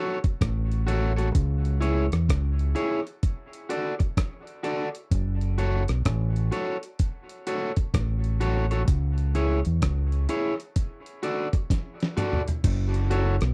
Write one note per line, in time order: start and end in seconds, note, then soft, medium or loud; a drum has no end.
0.00 0.17 F#4 medium
0.00 0.18 A4 medium
0.00 0.18 C#5 medium
0.24 kick medium
0.24 closed hi-hat medium
0.41 1.31 A1 loud
0.41 kick loud
0.41 cross-stick loud
0.41 closed hi-hat medium
0.72 closed hi-hat soft
0.87 1.11 F#4 medium
0.87 1.12 A4 medium
0.87 1.12 C#5 loud
0.87 closed hi-hat medium
1.17 1.29 F#4 medium
1.17 1.28 A4 medium
1.17 1.28 C#5 medium
1.17 closed hi-hat medium
1.35 2.08 C#2 loud
1.35 kick loud
1.35 closed hi-hat medium
1.65 closed hi-hat soft
1.81 2.05 E4 medium
1.81 2.05 G#4 medium
1.81 2.06 C#5 medium
1.81 closed hi-hat medium
2.12 2.28 E2 medium
2.12 cross-stick medium
2.12 closed hi-hat soft
2.29 2.73 C#2 loud
2.29 kick loud
2.29 cross-stick loud
2.29 closed hi-hat loud
2.59 closed hi-hat soft
2.75 2.99 E4 medium
2.75 3.00 G#4 medium
2.75 3.00 C#5 medium
2.75 closed hi-hat medium
3.07 closed hi-hat soft
3.23 kick loud
3.23 closed hi-hat medium
3.53 closed hi-hat medium
3.69 3.94 F#4 medium
3.69 3.94 A4 medium
3.69 3.94 D5 medium
3.69 closed hi-hat medium
3.99 muted clean electric guitar stroke soft
3.99 kick loud
3.99 closed hi-hat medium
4.17 kick loud
4.17 cross-stick loud
4.17 closed hi-hat loud
4.47 closed hi-hat soft
4.63 4.88 F#4 medium
4.63 4.88 A4 loud
4.63 4.88 D5 loud
4.63 closed hi-hat medium
4.95 closed hi-hat medium
5.11 5.85 F#1 loud
5.11 kick loud
5.11 closed hi-hat medium
5.41 closed hi-hat soft
5.58 5.82 F#4 medium
5.58 5.82 A4 medium
5.58 5.83 C#5 medium
5.58 closed hi-hat medium
5.88 6.05 B1 medium
5.88 cross-stick medium
5.88 closed hi-hat medium
6.05 6.49 A1 loud
6.05 kick loud
6.05 cross-stick loud
6.05 closed hi-hat loud
6.36 closed hi-hat soft
6.52 6.76 F#4 medium
6.52 6.76 A4 medium
6.52 6.76 C#5 medium
6.52 closed hi-hat medium
6.83 closed hi-hat soft
6.99 kick loud
6.99 closed hi-hat medium
7.29 closed hi-hat medium
7.47 7.71 F#4 medium
7.47 7.71 A4 medium
7.47 7.71 C#5 medium
7.47 closed hi-hat medium
7.76 kick medium
7.76 closed hi-hat soft
7.94 8.84 A1 loud
7.94 kick loud
7.94 cross-stick loud
7.94 closed hi-hat medium
8.24 closed hi-hat soft
8.41 8.65 F#4 medium
8.41 8.65 A4 medium
8.41 8.65 C#5 medium
8.41 closed hi-hat medium
8.71 8.82 F#4 medium
8.71 8.82 A4 medium
8.71 8.81 C#5 medium
8.71 closed hi-hat medium
8.88 9.61 C#2 loud
8.88 kick loud
8.88 closed hi-hat medium
9.18 closed hi-hat soft
9.35 9.59 E4 medium
9.35 9.59 G#4 medium
9.35 9.59 C#5 medium
9.35 closed hi-hat medium
9.65 9.82 E2 medium
9.65 closed hi-hat soft
9.82 10.26 C#2 loud
9.82 kick loud
9.82 cross-stick loud
9.82 closed hi-hat loud
10.12 closed hi-hat soft
10.29 10.53 E4 medium
10.29 10.53 G#4 medium
10.29 10.53 C#5 medium
10.29 closed hi-hat medium
10.60 closed hi-hat soft
10.76 kick medium
10.76 closed hi-hat medium
11.06 closed hi-hat soft
11.23 11.47 F#4 medium
11.23 11.47 A4 medium
11.23 11.48 D5 medium
11.23 closed hi-hat medium
11.53 muted clean electric guitar stroke soft
11.53 kick loud
11.53 closed hi-hat medium
11.70 kick loud
11.70 snare soft
11.70 closed hi-hat medium
12.00 snare medium
12.00 closed hi-hat soft
12.17 12.41 F#4 medium
12.17 12.41 A4 medium
12.17 12.42 D5 medium
12.17 closed hi-hat medium
12.17 mid tom medium
12.33 floor tom medium
12.48 closed hi-hat medium
12.48 floor tom medium
12.64 13.37 F#1 loud
12.64 kick loud
12.64 closed hi-hat medium
12.64 crash medium
12.94 closed hi-hat medium
13.10 13.35 F#4 medium
13.10 13.35 A4 medium
13.10 13.36 C#5 medium
13.10 closed hi-hat medium
13.41 13.54 B1 loud
13.41 cross-stick medium
13.41 closed hi-hat medium